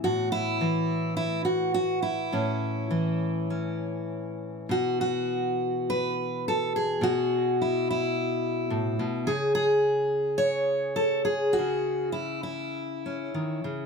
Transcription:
Already playing: E3
0.04 A2 F#4
0.32 E4
0.61 E3
1.17 E4
1.45 F#4
1.74 F#4
2.02 E4
2.33 A2 C#4
2.91 E3
3.50 C#4
4.69 B2 F#4
5.01 F#4
5.90 B4
6.48 A4
6.76 G#4
7.01 B2 F#4
7.62 E4
7.91 E4
8.70 A2
8.99 B2
9.27 C#3 G#4
9.55 G#4
10.38 C#5
10.96 A4
11.25 G#4
11.53 F#4
11.59 C#3
12.12 E4
12.43 E4
13.06 C#4
13.34 D#3
13.64 C#3

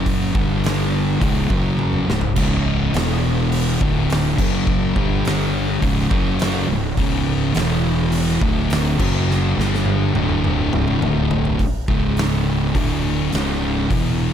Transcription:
Already playing: F#1 F#2 C#3 F#3
0.06 kick, open hi-hat
0.34 G1 G2 D3 G3, kick
0.64 snare, open hi-hat
1.20 C#1 C#2 G#2 C#3, kick, open hi-hat
1.50 F#1 F#2 C#3 F#3, kick
1.79 high tom
1.93 mid tom
2.08 C#1 C#2 G#2, snare
2.21 floor tom
2.36 C#1 C#2 G#2 C#3, kick, crash, splash
2.94 E1 E2 B2 E3, snare, open hi-hat
3.52 open hi-hat
3.81 D1 D2 A2 D3, kick
4.10 snare, open hi-hat
4.38 F#1 F#2 C#3 F#3, kick, crash
4.67 kick
4.96 G1 G2 D3 G3, kick
5.25 snare, open hi-hat
5.82 C#1 C#2 G#2 C#3, kick, open hi-hat
6.00 snare
6.11 F#1 F#2 C#3 F#3, kick
6.39 snare, open hi-hat
6.69 C#1 C#2 G#2
6.97 C#1 C#2 G#2 C#3, kick, open hi-hat
7.55 E1 E2 B2 E3, snare, open hi-hat
8.12 open hi-hat
8.29 snare
8.41 D1 D2 A2 D3, kick
8.70 snare, open hi-hat
8.99 F#1 F#2 C#3 F#3, kick, crash
9.31 snare
9.57 G1 G2 D3 G3, snare
9.74 snare
9.86 high tom
10.15 D1 D2 A2 D3, high tom
10.29 mid tom
10.44 mid tom
10.73 C#1 C#2 G#2 C#3, mid tom
10.88 mid tom
11.01 D1 D2 A2 D3, mid tom
11.31 floor tom
11.45 floor tom
11.59 kick, open hi-hat
11.88 C#1 C#2 G#2 C#3, kick
12.17 snare, open hi-hat
12.74 D1 D2 A2 D3, kick, open hi-hat
13.32 C#1 C#2 G#2 C#3, snare, open hi-hat
13.90 E1 E2 B2 E3, kick, open hi-hat

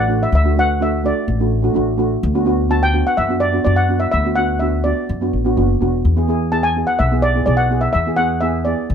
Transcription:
Already playing: A1 F#5
0.08 A3 D4 F#4
0.23 E5
0.32 D2 E5
0.44 A3 D4 F#4
0.56 A3 D4 F#4 F#5
0.80 A3 D4 F#4 E5
1.03 A3 D4 F#4 D5
1.28 A1
1.40 A3 D4 F#4
1.62 A3 D4 F#4
1.73 A1 A3 D4 F#4
1.98 A3 D4 F#4
2.23 D2
2.34 B3 D4 F#4
2.45 B3 D4 F#4
2.69 B3 D4 F#4 A5
2.83 G5
2.93 B3 D4 F#4
3.07 F#5
3.17 F#2 E5
3.29 B3 D4 F#4
3.40 D5
3.52 B3 D4 F#4
3.64 F#2 B3 D4 F#4 D5
3.76 F#5
3.89 B3 D4 F#4
4.00 E5
4.11 D2 E5
4.25 B3 D4 F#4
4.36 B3 D4 F#4 F#5
4.59 B3 D4 F#4 E5
4.84 B3 D4 F#4 D5
5.09 F#2
5.21 B3 D4 F#4
5.33 A1
5.45 B3 D4 F#4
5.56 F#1 B3 D4 F#4
5.81 E1 B3 D4 F#4
6.05 E2
6.16 B3 E4 G#4
6.28 B3 E4 G#4
6.52 B3 E4 G#4 A5
6.63 G#5
6.76 B3 E4 G#4
6.87 F#5
6.99 B1 E5
7.12 B3 E4 G#4
7.22 D5
7.35 B3 E4 G#4
7.46 B1 B3 E4 G#4 D5
7.57 F#5
7.71 B3 E4 G#4
7.81 E5
7.93 E2 E5
8.06 B3 E4 G#4
8.16 B3 E4 G#4 F#5
8.41 B3 E4 G#4 E5
8.65 B3 E4 G#4 D5
8.90 B1

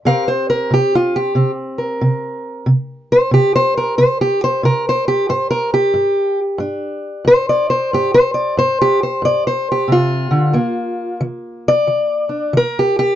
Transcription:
0.05 C3 C4 G4 A#4 F5
0.28 C5
0.50 A#4
0.71 C3 G4
0.95 F4
1.16 G4
1.35 C3 C4
1.78 A#4
2.01 C3
2.66 C3
3.12 C5
3.31 C3 G4
3.56 C5
3.77 A#4
3.98 C3 C5
4.21 G4
4.44 C5
4.63 C3 A#4
4.89 C5
5.08 G4
5.29 G2 C5
5.51 A#4
5.74 G4
5.94 G2
6.58 G2 D4
7.25 G2 C5
7.49 D5
7.70 C5
7.93 G2 G4
8.14 C5
8.34 D5
8.57 G2 C5
8.82 G4
9.03 C5
9.22 G2 D5
9.47 C5
9.72 G4
9.88 C3
9.92 F4
10.31 D3
10.53 D#3 A#3
11.21 D#3
11.68 D5
11.87 D#3
12.29 D4
12.53 D#3 A#4
12.79 G4
12.99 G4

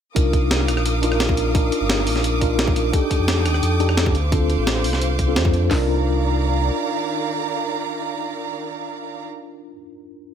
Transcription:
0.15 C2 D4 D#4 F4 A#4 F5 D6 D#6, kick, closed hi-hat
0.33 kick, closed hi-hat
0.51 snare, closed hi-hat
0.68 A#1, cross-stick, closed hi-hat
0.77 cross-stick
0.86 closed hi-hat
1.02 D4 D#4 F4 A#4, closed hi-hat
1.12 cross-stick
1.20 snare, closed hi-hat
1.29 kick
1.37 closed hi-hat
1.54 D4 D#4 F4 A#4, kick, closed hi-hat
1.72 closed hi-hat
1.81 G1
1.90 snare, closed hi-hat
2.07 A#1, open hi-hat
2.16 snare
2.24 closed hi-hat
2.40 D4 D#4 F4 A#4, kick, closed hi-hat
2.59 snare, closed hi-hat
2.68 kick
2.76 closed hi-hat
2.92 D4 D#4 G4 A4 G5 D#6, kick, closed hi-hat
3.11 kick, closed hi-hat
3.19 F2
3.28 snare, closed hi-hat
3.45 D#2, cross-stick, closed hi-hat
3.54 cross-stick
3.63 F2, closed hi-hat
3.80 D4 D#4 G4 A4, closed hi-hat
3.89 cross-stick
3.97 snare, closed hi-hat
4.06 kick
4.15 D2 C5 F5, closed hi-hat
4.31 C4 D4 F4 A4, kick, closed hi-hat
4.50 closed hi-hat
4.58 A1
4.67 snare, closed hi-hat
4.84 C2, open hi-hat
4.93 cross-stick, snare
5.02 closed hi-hat
5.19 kick, closed hi-hat
5.27 C4 D4 F4 A4
5.36 F2 C4 D4 F4 C5, snare, closed hi-hat
5.45 kick
5.54 closed hi-hat
5.69 C2 D#3 D4 D#4 F4 A#4 D5 F5 A#5, kick, snare, open hi-hat

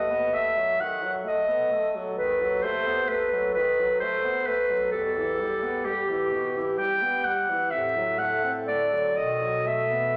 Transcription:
Already playing: D#2 A3 B4 D#5
0.11 B3
0.34 A3 E5
0.57 F#3
0.80 D#3 A4 F#5
1.03 F#3
1.25 A3 D#5
1.49 B3
1.72 A3
1.95 F#3
2.17 D#2 D#3 B4
2.41 F#3
2.63 A3 C5
2.87 B3
3.09 A3 B4
3.33 F#3
3.54 D#3 B4
3.80 F#3
4.00 A3 C5
4.25 B3
4.46 A3 B4
4.70 F#3
4.91 E2 B2 G4 A4
5.17 E3
5.40 G3
5.63 B3
5.85 G3 G4
6.09 E3
6.32 B2
6.56 E3
6.78 G3 G5
7.02 B3
7.24 G3 F#5
7.49 E3
7.70 A2 C3 A4 E5
7.96 F#3
8.18 A3 F#5
8.44 C4
8.67 A3 D5
8.93 F#3
9.16 B2 D#3 D#5
9.42 F#3
9.67 A3 E5
9.92 B3

